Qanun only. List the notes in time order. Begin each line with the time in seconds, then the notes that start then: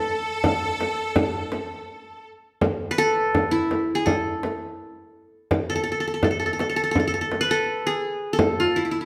Already playing: A4
2.91 B4
2.98 A4
3.51 E4
3.95 G#4
4.06 A4
5.70 A4
5.76 A4
5.84 A4
5.92 A4
6.00 A4
6.08 A4
6.14 A4
6.24 A4
6.31 A4
6.40 A4
6.46 A4
6.53 A4
6.60 A4
6.69 A4
6.76 A4
6.84 A4
6.91 A4
7.00 A4
7.07 A4
7.14 A4
7.21 A4
7.41 B4
7.51 A4
7.87 G#4
8.33 A4
8.60 F4
8.76 E4
8.85 E4
8.91 E4
9.01 E4